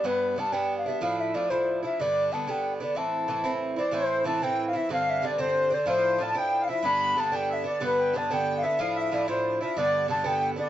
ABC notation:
X:1
M:6/8
L:1/16
Q:3/8=123
K:Gmix
V:1 name="Accordion"
z12 | z12 | z12 | z8 z2 d2 |
c4 a2 g3 f e2 | f4 d2 c6 | c4 a2 g3 f e2 | b4 a2 g2 e2 d2 |
B2 g2 a2 g4 e2 | f2 e4 c4 e2 | d4 a2 g3 z d2 |]
V:2 name="Flute"
B4 a2 g3 f e2 | f2 e2 d2 c4 e2 | d4 a2 g3 z d2 | a8- a2 d2 |
c4 a2 g3 f e2 | f2 e2 d2 c4 d2 | c4 a2 g3 f e2 | b4 a2 g2 e2 d2 |
B4 a2 g3 f e2 | f2 e2 d2 c4 e2 | d4 a2 g3 z d2 |]
V:3 name="Bouzouki"
[G,,G,B,D]4 [G,,G,B,D]2 [G,,G,B,D]4 [G,B,D]2 | [A,,F,DE]4 [A,,F,DE]2 [A,,F,DE]4 [F,DE]2 | [G,,D,B,D]4 [G,,D,B,D]2 [G,,D,B,D]4 [D,B,D]2 | [A,,E,CE]4 [A,,E,CE]2 [A,,E,CE]4 [E,CE]2 |
[A,,E,CE]4 [A,,E,CE]2 [A,,E,CE]4 [E,CE]2 | [G,,D,CD]4 [G,,D,CD]2 [G,,D,CD]4 [D,CD]2 | [A,,F,DE]4 [A,,F,DE]2 [A,,F,DE]4 [F,DE]2 | [G,,D,B,D]4 [G,,D,B,D]2 [G,,D,B,D]4 [D,B,D]2 |
[G,,D,B,D]4 [G,,D,B,D]2 [G,,D,B,D]4 [D,B,D]2 | [A,,F,DE]4 [A,,F,DE]2 [A,,F,DE]4 [F,DE]2 | [G,,D,B,D]4 [G,,D,B,D]2 [G,,D,B,D]4 [D,B,D]2 |]